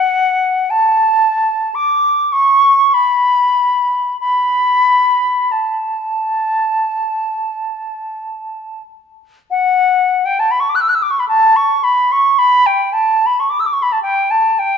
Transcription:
flute
Already playing: F#5
0.70 A5
1.74 D6
2.32 C#6
2.93 B5
4.20 B5
5.51 A5
9.50 F#5
10.25 G5
10.39 A5
10.50 B5
10.59 C#6
10.69 D6
10.75 F#6
10.80 E6
10.88 F#6
10.94 E6
11.02 D6
11.10 C#6
11.19 B5
11.28 A5
11.56 C#6
11.83 B5
12.11 C#6
12.38 B5
12.66 G5
12.92 A5
13.26 B5
13.39 C#6
13.49 D6
13.59 E6
13.65 D6
13.72 C#6
13.82 B5
13.92 A5
14.02 G5
14.30 A5
14.58 G5

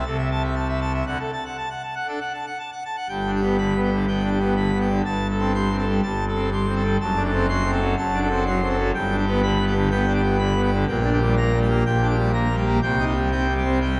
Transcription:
pipe organ
0.05 C2 C3 A4
0.18 E5
0.31 A5
0.43 E5
0.56 A5
0.68 E5
0.81 A5
0.94 E5
1.07 D2 D3 F#5
1.20 A4
1.33 A5
1.45 F#5
1.57 A5
1.70 F#5
1.83 A5
1.95 F#5
2.07 D4 A4
2.21 F#5
2.34 A5
2.46 F#5
2.59 A5
2.72 F#5
2.85 A5
2.96 F#5
3.09 G1 G2 G5
3.26 D4
3.35 G4
3.42 B3
3.58 D3 B5
3.75 B3
3.83 G4
3.91 D3
4.07 B3 G5
4.24 D4
4.32 G4
4.40 B3
4.56 D3 B5
4.73 B3
4.81 G4
4.89 D3
5.05 G1 G2 A5
5.30 A4
5.39 C4
5.55 G3 C6
5.71 C4
5.79 A4
5.88 G3
6.03 G1 G2 A5
6.28 A4
6.35 C4
6.52 G3 C6
6.68 C4
6.76 A4
6.85 G3
7.00 F#1 F#2 A5
7.17 D4
7.24 A4
7.32 C4
7.49 F#3 C6
7.65 C4
7.72 A4
7.81 F#3
7.97 F#1 F#2 A5
8.14 D4
8.22 A4
8.30 C4
8.46 F#3 C6
8.62 C4
8.70 A4
8.78 F#3
8.94 G1 G2 G5
9.11 D4
9.18 G4
9.27 B3
9.43 D3 B5
9.59 B3
9.67 G4
9.75 D3
9.90 B3 G5
10.07 D4
10.15 G4
10.23 B3
10.38 D3 B5
10.55 B3
10.63 G4
10.73 D3
10.88 A#1 A#2 G5
11.04 D4
11.13 G4
11.21 G3
11.38 A#3 A#5
11.53 G3
11.62 G4
11.70 A#3
11.85 A#1 A#2 G5
12.02 D4
12.10 G4
12.17 G3
12.34 A#3 A#5
12.50 G3
12.58 G4
12.66 A#3
12.82 C2 C3 G5
12.99 D#4
13.07 G4
13.16 G3
13.32 C4 G5
13.49 G3
13.57 G4
13.65 C4
13.81 G3 G5

